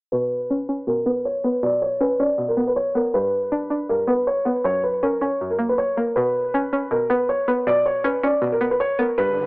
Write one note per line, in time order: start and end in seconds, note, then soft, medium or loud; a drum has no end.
0.12 0.86 B2 medium
0.12 0.83 B4 medium
0.50 0.68 C#4 medium
0.69 1.63 C#4 medium
0.87 1.62 B2 medium
0.87 1.04 A#4 medium
1.06 1.43 B3 medium
1.06 1.23 B4 medium
1.25 1.42 C#5 medium
1.44 2.38 B3 medium
1.44 1.61 B4 medium
1.63 2.37 B2 medium
1.63 1.80 D5 loud
1.82 1.98 C#5 medium
2.00 2.18 C#4 medium
2.00 2.17 B4 medium
2.20 3.14 C#4 medium
2.20 2.47 D5 medium
2.38 3.14 B2 medium
2.48 2.65 A#4 medium
2.57 2.94 B3 medium
2.67 2.75 B4 medium
2.76 2.93 C#5 medium
2.95 3.14 B3 medium
2.95 3.12 A#4 medium
3.14 3.88 G2 medium
3.14 3.85 B4 medium
3.52 3.69 D4 medium
3.70 4.65 D4 medium
3.89 4.65 G2 medium
3.89 4.06 A#4 medium
4.07 4.44 B3 medium
4.07 4.25 B4 medium
4.27 4.44 C#5 medium
4.45 4.64 B3 medium
4.45 4.63 B4 medium
4.64 5.40 F#2 loud
4.64 4.82 C#5 loud
4.84 5.00 B4 medium
5.03 5.20 C#4 medium
5.03 5.19 A#4 medium
5.21 6.16 C#4 medium
5.21 5.49 C#5 medium
5.41 6.16 F#2 medium
5.50 5.67 A#4 medium
5.59 5.96 A#3 medium
5.69 5.77 B4 medium
5.78 5.95 C#5 medium
5.97 6.16 A#3 medium
5.97 6.14 A#4 medium
6.16 6.90 B2 medium
6.16 6.87 B4 medium
6.54 6.72 C#4 medium
6.73 7.67 C#4 medium
6.91 7.66 B2 medium
6.91 7.08 A#4 medium
7.10 7.47 B3 medium
7.10 7.27 B4 medium
7.29 7.46 C#5 medium
7.48 8.42 B3 medium
7.48 7.65 B4 medium
7.67 8.41 B2 loud
7.67 7.83 D5 loud
7.86 8.02 C#5 medium
8.04 8.22 C#4 loud
8.04 8.21 B4 medium
8.23 9.18 C#4 medium
8.23 8.51 D5 medium
8.42 9.17 B2 medium
8.52 8.69 A#4 medium
8.61 8.98 B3 medium
8.71 8.79 B4 medium
8.80 8.97 C#5 medium
8.99 9.18 B3 medium
8.99 9.16 A#4 medium
9.18 9.46 G2 medium
9.18 9.46 B4 loud
9.18 riser medium